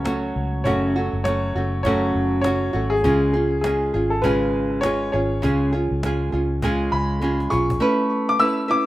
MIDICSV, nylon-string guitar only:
0, 0, Header, 1, 2, 480
1, 0, Start_track
1, 0, Key_signature, 3, "minor"
1, 0, Tempo, 596421
1, 528, Time_signature, 4, 2, 24, 8
1, 7131, End_track
2, 0, Start_track
2, 0, Title_t, "Nylon-string guitar"
2, 0, Program_c, 0, 24
2, 36, Note_on_c, 0, 54, 54
2, 42, Note_on_c, 0, 57, 58
2, 51, Note_on_c, 0, 61, 62
2, 56, Note_on_c, 0, 66, 60
2, 522, Note_off_c, 0, 54, 0
2, 523, Note_off_c, 0, 57, 0
2, 524, Note_on_c, 0, 42, 72
2, 526, Note_off_c, 0, 66, 0
2, 530, Note_on_c, 0, 49, 67
2, 531, Note_on_c, 0, 54, 70
2, 532, Note_off_c, 0, 61, 0
2, 533, Note_on_c, 0, 57, 74
2, 536, Note_on_c, 0, 61, 72
2, 536, Note_on_c, 0, 66, 73
2, 761, Note_off_c, 0, 66, 0
2, 766, Note_off_c, 0, 42, 0
2, 769, Note_off_c, 0, 49, 0
2, 770, Note_off_c, 0, 54, 0
2, 770, Note_off_c, 0, 61, 0
2, 770, Note_on_c, 0, 66, 48
2, 771, Note_off_c, 0, 57, 0
2, 779, Note_on_c, 0, 61, 45
2, 786, Note_on_c, 0, 57, 44
2, 794, Note_on_c, 0, 54, 37
2, 999, Note_off_c, 0, 54, 0
2, 1009, Note_off_c, 0, 57, 0
2, 1009, Note_on_c, 0, 54, 51
2, 1010, Note_off_c, 0, 66, 0
2, 1011, Note_off_c, 0, 61, 0
2, 1018, Note_on_c, 0, 57, 53
2, 1021, Note_on_c, 0, 61, 60
2, 1032, Note_on_c, 0, 66, 56
2, 1242, Note_off_c, 0, 66, 0
2, 1245, Note_off_c, 0, 61, 0
2, 1249, Note_off_c, 0, 54, 0
2, 1252, Note_on_c, 0, 66, 49
2, 1254, Note_off_c, 0, 57, 0
2, 1255, Note_on_c, 0, 61, 41
2, 1267, Note_on_c, 0, 57, 42
2, 1271, Note_on_c, 0, 54, 34
2, 1486, Note_off_c, 0, 54, 0
2, 1488, Note_on_c, 0, 42, 76
2, 1489, Note_off_c, 0, 57, 0
2, 1489, Note_off_c, 0, 61, 0
2, 1491, Note_off_c, 0, 66, 0
2, 1495, Note_on_c, 0, 49, 75
2, 1495, Note_on_c, 0, 54, 73
2, 1499, Note_on_c, 0, 57, 77
2, 1499, Note_on_c, 0, 61, 82
2, 1500, Note_on_c, 0, 66, 78
2, 1951, Note_off_c, 0, 54, 0
2, 1960, Note_on_c, 0, 54, 57
2, 1961, Note_off_c, 0, 57, 0
2, 1970, Note_off_c, 0, 42, 0
2, 1971, Note_off_c, 0, 61, 0
2, 1971, Note_on_c, 0, 57, 53
2, 1973, Note_off_c, 0, 49, 0
2, 1973, Note_off_c, 0, 66, 0
2, 1974, Note_on_c, 0, 61, 62
2, 1982, Note_on_c, 0, 66, 71
2, 2188, Note_off_c, 0, 66, 0
2, 2198, Note_off_c, 0, 61, 0
2, 2198, Note_on_c, 0, 66, 52
2, 2203, Note_off_c, 0, 57, 0
2, 2206, Note_off_c, 0, 54, 0
2, 2208, Note_on_c, 0, 61, 46
2, 2213, Note_on_c, 0, 57, 45
2, 2218, Note_on_c, 0, 54, 40
2, 2442, Note_off_c, 0, 61, 0
2, 2444, Note_off_c, 0, 54, 0
2, 2445, Note_off_c, 0, 66, 0
2, 2446, Note_on_c, 0, 49, 64
2, 2447, Note_on_c, 0, 56, 75
2, 2448, Note_off_c, 0, 57, 0
2, 2451, Note_on_c, 0, 61, 74
2, 2454, Note_on_c, 0, 65, 79
2, 2455, Note_on_c, 0, 68, 83
2, 2674, Note_off_c, 0, 68, 0
2, 2683, Note_on_c, 0, 68, 51
2, 2686, Note_off_c, 0, 65, 0
2, 2689, Note_off_c, 0, 49, 0
2, 2689, Note_off_c, 0, 56, 0
2, 2691, Note_off_c, 0, 61, 0
2, 2696, Note_on_c, 0, 65, 47
2, 2708, Note_on_c, 0, 61, 45
2, 2926, Note_off_c, 0, 61, 0
2, 2928, Note_off_c, 0, 68, 0
2, 2929, Note_on_c, 0, 56, 52
2, 2934, Note_off_c, 0, 65, 0
2, 2936, Note_on_c, 0, 61, 60
2, 2944, Note_on_c, 0, 65, 61
2, 2947, Note_on_c, 0, 68, 63
2, 3160, Note_off_c, 0, 68, 0
2, 3170, Note_off_c, 0, 56, 0
2, 3170, Note_on_c, 0, 68, 44
2, 3172, Note_off_c, 0, 65, 0
2, 3174, Note_off_c, 0, 61, 0
2, 3182, Note_on_c, 0, 65, 42
2, 3187, Note_on_c, 0, 61, 34
2, 3403, Note_off_c, 0, 61, 0
2, 3408, Note_off_c, 0, 65, 0
2, 3408, Note_on_c, 0, 49, 75
2, 3411, Note_off_c, 0, 68, 0
2, 3412, Note_on_c, 0, 56, 74
2, 3413, Note_on_c, 0, 61, 84
2, 3418, Note_on_c, 0, 65, 77
2, 3422, Note_on_c, 0, 68, 79
2, 3877, Note_off_c, 0, 56, 0
2, 3887, Note_on_c, 0, 56, 59
2, 3888, Note_off_c, 0, 65, 0
2, 3890, Note_off_c, 0, 49, 0
2, 3890, Note_off_c, 0, 61, 0
2, 3893, Note_on_c, 0, 61, 57
2, 3897, Note_off_c, 0, 68, 0
2, 3898, Note_on_c, 0, 65, 58
2, 3908, Note_on_c, 0, 68, 68
2, 4120, Note_off_c, 0, 68, 0
2, 4129, Note_off_c, 0, 56, 0
2, 4130, Note_on_c, 0, 68, 48
2, 4132, Note_off_c, 0, 65, 0
2, 4133, Note_off_c, 0, 61, 0
2, 4141, Note_on_c, 0, 65, 42
2, 4150, Note_on_c, 0, 61, 40
2, 4362, Note_on_c, 0, 49, 73
2, 4364, Note_off_c, 0, 61, 0
2, 4368, Note_off_c, 0, 65, 0
2, 4368, Note_on_c, 0, 56, 63
2, 4371, Note_off_c, 0, 68, 0
2, 4374, Note_on_c, 0, 61, 79
2, 4377, Note_on_c, 0, 65, 73
2, 4379, Note_on_c, 0, 68, 80
2, 4598, Note_off_c, 0, 68, 0
2, 4607, Note_off_c, 0, 49, 0
2, 4608, Note_on_c, 0, 68, 54
2, 4610, Note_off_c, 0, 56, 0
2, 4613, Note_off_c, 0, 61, 0
2, 4614, Note_off_c, 0, 65, 0
2, 4623, Note_on_c, 0, 65, 46
2, 4631, Note_on_c, 0, 61, 40
2, 4850, Note_off_c, 0, 68, 0
2, 4855, Note_off_c, 0, 61, 0
2, 4855, Note_on_c, 0, 56, 53
2, 4857, Note_off_c, 0, 65, 0
2, 4865, Note_on_c, 0, 61, 59
2, 4872, Note_on_c, 0, 65, 67
2, 4877, Note_on_c, 0, 68, 67
2, 5079, Note_off_c, 0, 68, 0
2, 5087, Note_off_c, 0, 65, 0
2, 5089, Note_on_c, 0, 68, 45
2, 5093, Note_off_c, 0, 56, 0
2, 5097, Note_on_c, 0, 65, 42
2, 5098, Note_off_c, 0, 61, 0
2, 5110, Note_on_c, 0, 61, 43
2, 5330, Note_off_c, 0, 68, 0
2, 5333, Note_off_c, 0, 61, 0
2, 5334, Note_off_c, 0, 65, 0
2, 5335, Note_on_c, 0, 49, 83
2, 5338, Note_on_c, 0, 56, 85
2, 5343, Note_on_c, 0, 61, 81
2, 5348, Note_on_c, 0, 65, 93
2, 5349, Note_on_c, 0, 68, 97
2, 5797, Note_off_c, 0, 56, 0
2, 5806, Note_on_c, 0, 56, 70
2, 5812, Note_off_c, 0, 49, 0
2, 5812, Note_off_c, 0, 61, 0
2, 5812, Note_off_c, 0, 65, 0
2, 5815, Note_on_c, 0, 61, 64
2, 5816, Note_off_c, 0, 68, 0
2, 5822, Note_on_c, 0, 65, 63
2, 5825, Note_on_c, 0, 68, 68
2, 6033, Note_off_c, 0, 68, 0
2, 6043, Note_on_c, 0, 68, 51
2, 6045, Note_off_c, 0, 65, 0
2, 6048, Note_off_c, 0, 56, 0
2, 6052, Note_off_c, 0, 61, 0
2, 6055, Note_on_c, 0, 65, 46
2, 6066, Note_on_c, 0, 61, 43
2, 6272, Note_off_c, 0, 61, 0
2, 6278, Note_on_c, 0, 57, 74
2, 6282, Note_on_c, 0, 61, 81
2, 6285, Note_off_c, 0, 65, 0
2, 6285, Note_off_c, 0, 68, 0
2, 6288, Note_on_c, 0, 64, 80
2, 6292, Note_on_c, 0, 71, 86
2, 6750, Note_off_c, 0, 57, 0
2, 6752, Note_off_c, 0, 61, 0
2, 6753, Note_on_c, 0, 57, 63
2, 6760, Note_off_c, 0, 64, 0
2, 6761, Note_off_c, 0, 71, 0
2, 6761, Note_on_c, 0, 61, 58
2, 6769, Note_on_c, 0, 64, 62
2, 6771, Note_on_c, 0, 71, 63
2, 6977, Note_off_c, 0, 71, 0
2, 6986, Note_on_c, 0, 71, 52
2, 6987, Note_off_c, 0, 64, 0
2, 6997, Note_on_c, 0, 64, 50
2, 6999, Note_off_c, 0, 57, 0
2, 7000, Note_off_c, 0, 61, 0
2, 7010, Note_on_c, 0, 61, 46
2, 7131, Note_off_c, 0, 61, 0
2, 7131, Note_off_c, 0, 64, 0
2, 7131, Note_off_c, 0, 71, 0
2, 7131, End_track
0, 0, End_of_file